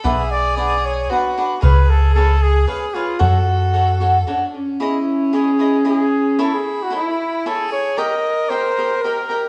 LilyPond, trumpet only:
\new Staff \with { instrumentName = "Trumpet" } { \time 3/4 \key fis \minor \tempo 4 = 114 e''8 d''8 d''8 cis''8 b'8 r8 | b'8 a'8 a'8 gis'8 gis'8 eis'8 | fis'2 r4 | \key a \lydian e'4 gis'4 gis'4 |
a'16 gis'8 fis'16 e'4 a'8 cis''8 | dis''4 bis'4 ais'4 | }